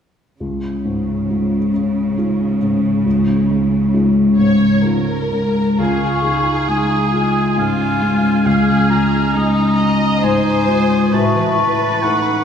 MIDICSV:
0, 0, Header, 1, 8, 480
1, 0, Start_track
1, 0, Key_signature, -5, "major"
1, 0, Tempo, 887574
1, 214, Time_signature, 3, 2, 24, 8
1, 2131, Tempo, 917431
1, 3571, Tempo, 891530
1, 6666, End_track
2, 0, Start_track
2, 0, Title_t, "Flute section"
2, 0, Program_c, 0, 73
2, 3096, Note_on_c, 0, 85, 38
2, 3548, Note_off_c, 0, 85, 0
2, 3565, Note_on_c, 0, 87, 36
2, 4045, Note_off_c, 0, 87, 0
2, 4051, Note_on_c, 0, 89, 31
2, 4518, Note_off_c, 0, 89, 0
2, 4525, Note_on_c, 0, 89, 39
2, 4995, Note_off_c, 0, 89, 0
2, 5004, Note_on_c, 0, 87, 35
2, 5471, Note_off_c, 0, 87, 0
2, 5488, Note_on_c, 0, 87, 34
2, 5958, Note_off_c, 0, 87, 0
2, 5970, Note_on_c, 0, 85, 45
2, 6666, Note_off_c, 0, 85, 0
2, 6666, End_track
3, 0, Start_track
3, 0, Title_t, "Oboe"
3, 0, Program_c, 1, 68
3, 3099, Note_on_c, 1, 77, 35
3, 3569, Note_on_c, 1, 80, 35
3, 3577, Note_off_c, 1, 77, 0
3, 4047, Note_off_c, 1, 80, 0
3, 4053, Note_on_c, 1, 80, 40
3, 4523, Note_on_c, 1, 77, 40
3, 4531, Note_off_c, 1, 80, 0
3, 4755, Note_off_c, 1, 77, 0
3, 4758, Note_on_c, 1, 82, 37
3, 5479, Note_on_c, 1, 80, 42
3, 5487, Note_off_c, 1, 82, 0
3, 5966, Note_on_c, 1, 81, 36
3, 5974, Note_off_c, 1, 80, 0
3, 6443, Note_on_c, 1, 78, 42
3, 6451, Note_off_c, 1, 81, 0
3, 6666, Note_off_c, 1, 78, 0
3, 6666, End_track
4, 0, Start_track
4, 0, Title_t, "Violin section"
4, 0, Program_c, 2, 48
4, 2361, Note_on_c, 2, 73, 53
4, 2587, Note_off_c, 2, 73, 0
4, 2604, Note_on_c, 2, 70, 53
4, 3098, Note_off_c, 2, 70, 0
4, 3100, Note_on_c, 2, 68, 49
4, 4048, Note_off_c, 2, 68, 0
4, 4050, Note_on_c, 2, 65, 51
4, 4524, Note_off_c, 2, 65, 0
4, 4525, Note_on_c, 2, 68, 51
4, 4995, Note_off_c, 2, 68, 0
4, 5002, Note_on_c, 2, 63, 51
4, 5242, Note_off_c, 2, 63, 0
4, 5244, Note_on_c, 2, 75, 53
4, 5477, Note_on_c, 2, 72, 62
4, 5481, Note_off_c, 2, 75, 0
4, 5961, Note_on_c, 2, 71, 54
4, 5962, Note_off_c, 2, 72, 0
4, 6666, Note_off_c, 2, 71, 0
4, 6666, End_track
5, 0, Start_track
5, 0, Title_t, "Clarinet"
5, 0, Program_c, 3, 71
5, 3101, Note_on_c, 3, 65, 41
5, 3333, Note_on_c, 3, 63, 37
5, 3341, Note_off_c, 3, 65, 0
5, 3569, Note_off_c, 3, 63, 0
5, 3577, Note_on_c, 3, 63, 39
5, 3806, Note_on_c, 3, 65, 37
5, 3814, Note_off_c, 3, 63, 0
5, 4052, Note_on_c, 3, 61, 39
5, 4060, Note_off_c, 3, 65, 0
5, 4287, Note_off_c, 3, 61, 0
5, 4289, Note_on_c, 3, 61, 40
5, 5481, Note_on_c, 3, 63, 43
5, 5489, Note_off_c, 3, 61, 0
5, 5719, Note_on_c, 3, 65, 44
5, 5727, Note_off_c, 3, 63, 0
5, 5960, Note_off_c, 3, 65, 0
5, 5963, Note_on_c, 3, 66, 45
5, 6197, Note_on_c, 3, 64, 38
5, 6206, Note_off_c, 3, 66, 0
5, 6442, Note_off_c, 3, 64, 0
5, 6445, Note_on_c, 3, 63, 42
5, 6666, Note_off_c, 3, 63, 0
5, 6666, End_track
6, 0, Start_track
6, 0, Title_t, "Harp"
6, 0, Program_c, 4, 46
6, 3099, Note_on_c, 4, 49, 38
6, 3216, Note_on_c, 4, 61, 28
6, 3331, Note_on_c, 4, 56, 26
6, 3451, Note_on_c, 4, 63, 31
6, 3567, Note_on_c, 4, 65, 30
6, 3683, Note_off_c, 4, 63, 0
6, 3690, Note_on_c, 4, 63, 32
6, 3804, Note_off_c, 4, 65, 0
6, 3810, Note_on_c, 4, 65, 29
6, 3923, Note_off_c, 4, 63, 0
6, 3929, Note_on_c, 4, 63, 30
6, 4041, Note_off_c, 4, 56, 0
6, 4048, Note_on_c, 4, 56, 27
6, 4162, Note_off_c, 4, 61, 0
6, 4168, Note_on_c, 4, 61, 27
6, 4277, Note_off_c, 4, 56, 0
6, 4283, Note_on_c, 4, 56, 29
6, 4395, Note_off_c, 4, 61, 0
6, 4401, Note_on_c, 4, 61, 29
6, 4515, Note_off_c, 4, 49, 0
6, 4521, Note_on_c, 4, 49, 38
6, 4635, Note_off_c, 4, 56, 0
6, 4642, Note_on_c, 4, 56, 30
6, 4755, Note_off_c, 4, 61, 0
6, 4761, Note_on_c, 4, 61, 29
6, 4877, Note_off_c, 4, 63, 0
6, 4883, Note_on_c, 4, 63, 31
6, 4994, Note_off_c, 4, 65, 0
6, 5001, Note_on_c, 4, 65, 32
6, 5115, Note_off_c, 4, 63, 0
6, 5121, Note_on_c, 4, 63, 30
6, 5236, Note_off_c, 4, 65, 0
6, 5243, Note_on_c, 4, 65, 32
6, 5353, Note_off_c, 4, 63, 0
6, 5472, Note_off_c, 4, 56, 0
6, 5478, Note_on_c, 4, 56, 32
6, 5587, Note_off_c, 4, 61, 0
6, 5594, Note_on_c, 4, 61, 30
6, 5708, Note_off_c, 4, 56, 0
6, 5714, Note_on_c, 4, 56, 32
6, 5828, Note_off_c, 4, 61, 0
6, 5835, Note_on_c, 4, 61, 33
6, 5953, Note_on_c, 4, 45, 36
6, 5980, Note_off_c, 4, 56, 0
6, 5982, Note_off_c, 4, 49, 0
6, 5983, Note_off_c, 4, 65, 0
6, 6077, Note_on_c, 4, 52, 31
6, 6202, Note_on_c, 4, 57, 31
6, 6319, Note_off_c, 4, 61, 0
6, 6325, Note_on_c, 4, 61, 35
6, 6445, Note_on_c, 4, 69, 35
6, 6557, Note_off_c, 4, 61, 0
6, 6563, Note_on_c, 4, 61, 34
6, 6666, Note_off_c, 4, 45, 0
6, 6666, Note_off_c, 4, 52, 0
6, 6666, Note_off_c, 4, 57, 0
6, 6666, Note_off_c, 4, 61, 0
6, 6666, Note_off_c, 4, 69, 0
6, 6666, End_track
7, 0, Start_track
7, 0, Title_t, "Felt piano"
7, 0, Program_c, 5, 0
7, 218, Note_on_c, 5, 37, 31
7, 317, Control_c, 5, 64, 127
7, 461, Note_on_c, 5, 44, 26
7, 703, Note_on_c, 5, 63, 22
7, 704, Note_on_c, 5, 56, 23
7, 706, Note_on_c, 5, 65, 25
7, 845, Note_off_c, 5, 44, 0
7, 919, Note_off_c, 5, 63, 0
7, 920, Note_off_c, 5, 56, 0
7, 920, Note_off_c, 5, 65, 0
7, 942, Note_on_c, 5, 56, 25
7, 1168, Note_off_c, 5, 56, 0
7, 1176, Note_on_c, 5, 56, 28
7, 1176, Note_on_c, 5, 63, 29
7, 1180, Note_on_c, 5, 65, 34
7, 1391, Note_off_c, 5, 56, 0
7, 1391, Note_off_c, 5, 63, 0
7, 1393, Note_off_c, 5, 65, 0
7, 1416, Note_on_c, 5, 44, 33
7, 1631, Note_off_c, 5, 37, 0
7, 1653, Note_on_c, 5, 37, 38
7, 1660, Control_c, 5, 64, 0
7, 1743, Control_c, 5, 64, 127
7, 1795, Note_off_c, 5, 44, 0
7, 1893, Note_on_c, 5, 56, 31
7, 2123, Note_off_c, 5, 56, 0
7, 2131, Note_on_c, 5, 56, 31
7, 2133, Note_on_c, 5, 63, 27
7, 2133, Note_on_c, 5, 65, 34
7, 2345, Note_off_c, 5, 56, 0
7, 2346, Note_off_c, 5, 63, 0
7, 2346, Note_off_c, 5, 65, 0
7, 2363, Note_on_c, 5, 44, 29
7, 2601, Note_on_c, 5, 56, 29
7, 2605, Note_on_c, 5, 63, 29
7, 2607, Note_on_c, 5, 65, 34
7, 2752, Note_off_c, 5, 44, 0
7, 2831, Note_off_c, 5, 56, 0
7, 2833, Note_off_c, 5, 63, 0
7, 2833, Note_off_c, 5, 65, 0
7, 2850, Note_on_c, 5, 56, 27
7, 3080, Note_off_c, 5, 37, 0
7, 3098, Note_off_c, 5, 56, 0
7, 3099, Note_on_c, 5, 37, 35
7, 3110, Control_c, 5, 64, 0
7, 3213, Control_c, 5, 64, 127
7, 3335, Note_on_c, 5, 65, 31
7, 3566, Note_on_c, 5, 56, 29
7, 3713, Note_off_c, 5, 65, 0
7, 3807, Note_on_c, 5, 63, 29
7, 3950, Note_off_c, 5, 56, 0
7, 4046, Note_on_c, 5, 44, 29
7, 4189, Note_off_c, 5, 63, 0
7, 4283, Note_on_c, 5, 56, 29
7, 4427, Note_off_c, 5, 44, 0
7, 4501, Note_off_c, 5, 37, 0
7, 4520, Note_on_c, 5, 37, 36
7, 4532, Control_c, 5, 64, 0
7, 4631, Control_c, 5, 64, 127
7, 4666, Note_off_c, 5, 56, 0
7, 4764, Note_on_c, 5, 65, 31
7, 5004, Note_on_c, 5, 56, 30
7, 5148, Note_off_c, 5, 65, 0
7, 5243, Note_on_c, 5, 63, 27
7, 5386, Note_off_c, 5, 56, 0
7, 5479, Note_on_c, 5, 44, 32
7, 5624, Note_off_c, 5, 63, 0
7, 5719, Note_on_c, 5, 56, 29
7, 5865, Note_off_c, 5, 44, 0
7, 5941, Note_off_c, 5, 37, 0
7, 5963, Note_off_c, 5, 56, 0
7, 5963, Note_on_c, 5, 45, 40
7, 5973, Control_c, 5, 64, 0
7, 6072, Control_c, 5, 64, 127
7, 6211, Note_on_c, 5, 64, 32
7, 6447, Note_on_c, 5, 57, 30
7, 6595, Note_off_c, 5, 64, 0
7, 6666, Note_off_c, 5, 45, 0
7, 6666, Note_off_c, 5, 57, 0
7, 6666, End_track
8, 0, Start_track
8, 0, Title_t, "Cello section"
8, 0, Program_c, 6, 48
8, 216, Note_on_c, 6, 49, 37
8, 2971, Note_off_c, 6, 49, 0
8, 6666, End_track
0, 0, End_of_file